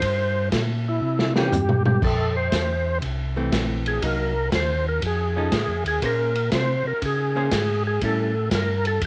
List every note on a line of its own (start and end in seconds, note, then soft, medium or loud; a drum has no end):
0.00 0.51 G2 medium
0.00 0.49 C5 loud
0.00 kick soft
0.00 ride medium
0.52 1.01 A#2 medium
0.52 kick soft
0.52 snare medium
0.52 hi-hat pedal medium
0.52 ride medium
0.88 1.34 E4 medium
1.02 1.51 C3 medium
1.19 snare medium
1.35 1.51 E3 medium
1.35 1.51 A#3 medium
1.35 1.51 C#4 medium
1.35 1.83 G4 medium
1.35 snare medium
1.52 2.00 G2 medium
1.52 floor tom medium
1.52 hi-hat pedal medium
1.69 mid tom medium
1.85 2.02 G4 medium
1.85 mid tom medium
2.02 2.51 F2 medium
2.02 2.36 A4 medium
2.02 kick medium
2.02 crash medium
2.37 2.99 C5 medium
2.52 3.01 E2 medium
2.52 kick soft
2.52 snare medium
2.52 hi-hat pedal medium
2.52 ride medium
3.02 3.51 C2 medium
3.02 kick soft
3.02 ride medium
3.36 3.99 E3 medium
3.36 3.99 A3 medium
3.36 4.00 C4 medium
3.52 4.00 A#1 medium
3.52 kick soft
3.52 snare medium
3.52 hi-hat pedal medium
3.52 ride medium
3.86 4.03 G#4 medium
3.86 ride soft
4.02 4.50 C2 medium
4.02 4.32 F#3 medium
4.02 4.33 A#3 medium
4.02 4.33 D#4 medium
4.02 4.50 A#4 medium
4.02 kick soft
4.02 ride medium
4.52 5.00 D#2 medium
4.52 4.86 C5 medium
4.52 kick soft
4.52 snare medium
4.52 hi-hat pedal soft
4.52 ride medium
4.88 5.03 A#4 medium
5.02 5.51 F2 medium
5.02 kick soft
5.02 ride medium
5.06 5.84 G#4 medium
5.37 5.51 F3 medium
5.37 5.51 C#4 medium
5.37 5.51 D#4 medium
5.37 5.52 A4 medium
5.52 5.68 A2 medium
5.52 kick soft
5.52 snare medium
5.52 hi-hat pedal medium
5.52 ride medium
5.68 5.85 F2 medium
5.84 6.00 D#2 medium
5.84 6.03 G#4 medium
5.84 ride soft
6.02 6.50 A#2 medium
6.02 6.33 A#3 medium
6.02 6.33 C#4 medium
6.02 6.33 G#4 medium
6.02 6.50 A#4 medium
6.02 6.33 C5 medium
6.02 kick soft
6.02 ride medium
6.35 ride soft
6.52 6.83 C3 loud
6.52 6.86 C5 loud
6.52 kick soft
6.52 snare medium
6.52 hi-hat pedal medium
6.52 ride medium
6.85 6.93 C3 soft
6.85 7.02 A#4 medium
7.02 7.50 C#3 medium
7.02 7.83 G#4 medium
7.02 kick soft
7.02 ride medium
7.36 7.50 A#3 medium
7.36 7.51 C#4 medium
7.36 7.51 G#4 medium
7.36 7.51 C5 medium
7.51 8.00 G#2 medium
7.51 kick soft
7.51 snare medium
7.51 hi-hat pedal medium
7.51 ride medium
7.87 8.02 G#4 medium
8.01 8.50 A2 medium
8.01 8.32 G3 medium
8.01 8.33 C#4 medium
8.01 8.33 E4 medium
8.01 8.50 A4 medium
8.01 kick soft
8.01 ride medium
8.51 9.00 G2 loud
8.51 8.86 A#4 medium
8.51 kick soft
8.51 snare medium
8.51 hi-hat pedal medium
8.51 ride medium
8.85 9.02 A4 medium
8.85 ride soft
9.01 9.06 E2 medium
9.01 kick soft
9.01 ride medium